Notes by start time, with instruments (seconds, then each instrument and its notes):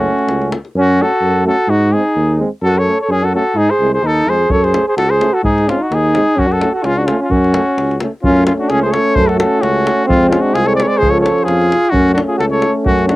Already playing: euphonium A3, flugelhorn C#4, french horn C#4, cornet F#4
0.19 davul high
0.28 tuba C#2, davul high
0.42 davul high
0.52 davul high
0.65 davul high
0.75 tuba F#2, flugelhorn C#4, cornet F#4
0.99 euphonium A3, french horn C#4, flugelhorn F#4, cornet A4
1.21 tuba F#2
1.44 euphonium A3, french horn C#4, flugelhorn F#4, cornet A4
1.68 tuba G#2, flugelhorn D#4, cornet F#4
1.91 euphonium G#3, french horn C4, flugelhorn D#4, cornet G#4
2.15 tuba D#2
2.39 euphonium G#3, french horn C4
2.62 tuba F#2, flugelhorn F#4, cornet A4
2.78 flugelhorn A4, cornet C#5
2.85 euphonium A3, french horn C#4
3.01 flugelhorn A4, cornet C#5
3.08 tuba F#2, flugelhorn C#4, cornet G#4
3.24 flugelhorn F#4, cornet A4
3.33 euphonium A3, french horn C#4, flugelhorn F#4, cornet A4
3.55 tuba G#2, flugelhorn D#4, cornet G#4
3.70 flugelhorn G#4, cornet C5
3.79 tuba C2, euphonium G#3, french horn C4
3.93 flugelhorn G#4, cornet C5
4.02 tuba D#2, flugelhorn D#4, cornet A4
4.25 tuba F2, euphonium G#3, french horn C4, flugelhorn G#4
4.29 cornet C5
4.49 tuba F#2, flugelhorn A4, cornet C#5, davul low
4.63 flugelhorn G#4, cornet C5, davul high
4.73 euphonium A3, french horn C#4, davul high
4.87 flugelhorn G#4, cornet C5
4.97 tuba C#2, flugelhorn F#4, cornet A4, davul high
5.10 flugelhorn G#4, cornet C5
5.20 euphonium A3, french horn C#4, davul high
5.33 flugelhorn F#4, cornet A4
5.43 tuba G#2, flugelhorn D#4, cornet G#4, davul low
5.58 davul high
5.68 euphonium G#3, french horn C4, flugelhorn C#4, cornet F4, davul high
5.80 flugelhorn D#4, cornet F#4
5.89 tuba D#2, flugelhorn D#4, davul high
5.94 cornet G#4
6.12 euphonium G#3, french horn C4, davul high
6.35 tuba F#2, flugelhorn C#4, cornet F#4, davul low
6.47 flugelhorn F#4
6.52 cornet A4, davul high
6.61 euphonium A3, french horn C#4, davul high
6.72 flugelhorn F#4, cornet A4
6.84 tuba C#2, flugelhorn C#4, cornet F4, davul high
6.97 flugelhorn D4, cornet F#4
7.06 euphonium A3, flugelhorn C#4, french horn C#4, cornet F4, davul high
7.20 flugelhorn C#4, cornet F4
7.30 tuba F#2, flugelhorn C#4, cornet F#4, davul low
7.45 davul high
7.53 euphonium A3, french horn C#4, davul high
7.77 tuba C#2, davul high
7.91 davul high
8.00 euphonium A3, french horn C#4, davul high
8.22 tuba F#2, euphonium A3, french horn C#4, flugelhorn C#4, cornet F4, davul low
8.36 davul high
8.46 flugelhorn C#4, cornet F4, davul high
8.59 flugelhorn D4, cornet F#4
8.69 tuba C#2, flugelhorn C#4, cornet G#4, davul high
8.82 flugelhorn G#4, cornet C5
8.91 flugelhorn A4, cornet C#5, davul high
9.15 tuba F#2, flugelhorn A4, cornet C5, davul low
9.27 flugelhorn F#4, cornet A4, davul high
9.38 flugelhorn F#4, cornet A4, davul high
9.60 tuba C#2, flugelhorn C#4, cornet F#4, davul high
9.87 davul high
10.05 tuba F2, euphonium G#3, flugelhorn C4, french horn C4, cornet F4
10.10 davul low
10.23 davul high
10.30 flugelhorn C#4, cornet F4, davul high
10.41 flugelhorn D4, cornet F#4
10.53 tuba C2, flugelhorn F4, cornet G#4, davul high
10.65 flugelhorn A4, cornet C#5
10.75 flugelhorn C5, cornet D5
10.80 flugelhorn A4, cornet C#5, davul high
10.87 flugelhorn C5, cornet D5
10.98 tuba C#2, euphonium F3, french horn C#4, flugelhorn G#4, cornet C5
11.03 davul low
11.10 flugelhorn A4, cornet C#5
11.20 flugelhorn A4, cornet C#5
11.26 davul high
11.38 davul high
11.44 tuba F2, flugelhorn F4, cornet G#4
11.48 davul high
11.62 davul high
11.72 davul high
11.85 davul high
11.89 tuba F#2, flugelhorn C#4, cornet F#4
11.94 euphonium A3, french horn C#4, davul low
12.08 davul high
12.14 flugelhorn D4, cornet F#4, davul high
12.28 flugelhorn F4, cornet G#4
12.37 tuba C#2, flugelhorn F#4, cornet A4, davul high
12.50 flugelhorn A4, cornet C#5
12.62 davul high
12.85 tuba F#2, flugelhorn C#4, cornet F#4, davul low
12.99 davul high
13.07 flugelhorn D4, cornet F#4, davul high